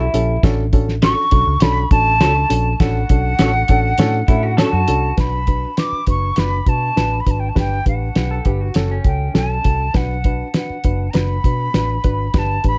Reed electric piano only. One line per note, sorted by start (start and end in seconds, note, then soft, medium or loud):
0.14 0.35 C#4 medium
0.14 0.35 E4 medium
0.14 0.35 G4 medium
0.14 0.36 A4 medium
0.43 0.65 C#4 loud
0.43 0.65 D4 loud
0.43 0.65 F#4 loud
0.43 0.65 A4 loud
0.73 0.94 C#4 medium
0.73 0.94 D4 medium
0.73 0.95 F#4 medium
0.73 0.95 A4 loud
1.03 1.24 C#4 medium
1.03 1.24 D4 medium
1.03 1.24 F#4 medium
1.03 1.24 A4 medium
1.31 1.53 C#4 medium
1.31 1.53 D4 medium
1.31 1.54 F#4 medium
1.31 1.54 A4 medium
1.62 1.83 C#4 medium
1.62 1.83 D4 medium
1.62 1.83 F#4 medium
1.62 1.84 A4 loud
1.92 2.13 C#4 medium
1.92 2.13 D4 medium
1.92 2.13 F#4 medium
1.92 2.13 A4 medium
2.21 2.42 C#4 medium
2.21 2.42 D4 medium
2.21 2.42 F#4 medium
2.21 2.43 A4 medium
2.50 2.72 C#4 medium
2.50 2.72 D4 medium
2.50 2.72 F#4 medium
2.50 2.72 A4 medium
2.80 3.02 C#4 medium
2.80 3.02 D4 medium
2.80 3.02 F#4 medium
2.80 3.02 A4 loud
3.10 3.31 C#4 medium
3.10 3.31 D4 medium
3.10 3.32 F#4 medium
3.10 3.32 A4 medium
3.40 3.61 C#4 medium
3.40 3.61 D4 medium
3.40 3.61 F#4 medium
3.40 3.61 A4 medium
3.70 3.91 C#4 medium
3.70 3.91 D4 medium
3.70 3.91 F#4 medium
3.70 3.91 A4 loud
3.99 4.20 C#4 loud
3.99 4.21 D4 loud
3.99 4.21 F#4 loud
3.99 4.21 A4 loud
4.29 4.50 C#4 medium
4.29 4.50 D4 medium
4.29 4.50 F#4 medium
4.29 4.51 A4 medium
4.59 4.80 C#4 medium
4.59 4.80 D4 medium
4.59 4.80 F#4 medium
4.59 4.80 A4 medium
4.88 5.09 C#4 medium
4.88 5.09 D4 medium
4.88 5.10 F#4 medium
4.88 5.10 A4 loud
5.17 5.39 D4 medium
5.17 5.39 F#4 medium
5.17 5.39 B4 medium
5.48 5.69 D4 medium
5.48 5.69 F#4 medium
5.48 5.69 B4 medium
5.78 5.99 D4 medium
5.78 5.99 F#4 medium
5.78 5.99 B4 medium
6.07 6.29 D4 medium
6.07 6.29 F#4 medium
6.07 6.29 B4 medium
6.37 6.58 D4 medium
6.37 6.59 F#4 medium
6.37 6.59 B4 loud
6.67 6.88 D4 medium
6.67 6.88 F#4 medium
6.67 6.89 B4 medium
6.96 7.18 D4 medium
6.96 7.18 F#4 medium
6.96 7.18 B4 loud
7.27 7.48 D4 medium
7.27 7.48 F#4 medium
7.27 7.48 B4 medium
7.55 7.77 D4 medium
7.55 7.77 G4 medium
7.55 7.77 B4 medium
7.86 8.07 D4 medium
7.86 8.07 G4 medium
7.86 8.08 B4 medium
8.15 8.37 D4 medium
8.15 8.37 G4 medium
8.15 8.37 B4 medium
8.46 8.67 D4 medium
8.46 8.67 G4 medium
8.46 8.67 B4 medium
8.76 8.97 C#4 loud
8.76 8.97 F#4 medium
8.76 8.97 A4 loud
9.05 9.27 C#4 medium
9.05 9.27 F#4 medium
9.05 9.27 A4 medium
9.34 9.56 C#4 medium
9.34 9.56 F#4 medium
9.34 9.57 A4 loud
9.64 9.86 C#4 medium
9.64 9.86 F#4 medium
9.64 9.86 A4 medium
9.94 10.16 D4 medium
9.94 10.16 F#4 medium
9.94 10.16 B4 medium
10.25 10.47 D4 medium
10.25 10.47 F#4 medium
10.25 10.47 B4 medium
10.55 10.76 D4 medium
10.55 10.76 F#4 medium
10.55 10.77 B4 medium
10.84 11.06 D4 medium
10.84 11.06 F#4 medium
10.84 11.06 B4 medium
11.14 11.36 D4 medium
11.14 11.36 F#4 medium
11.14 11.36 B4 medium
11.45 11.66 D4 medium
11.45 11.67 F#4 medium
11.45 11.67 B4 medium
11.74 11.96 D4 medium
11.74 11.96 F#4 medium
11.74 11.96 B4 medium
12.04 12.26 D4 medium
12.04 12.26 F#4 medium
12.04 12.26 B4 medium
12.35 12.56 D4 medium
12.35 12.56 G4 medium
12.35 12.56 B4 medium
12.64 12.78 D4 medium
12.64 12.78 G4 medium
12.64 12.78 B4 medium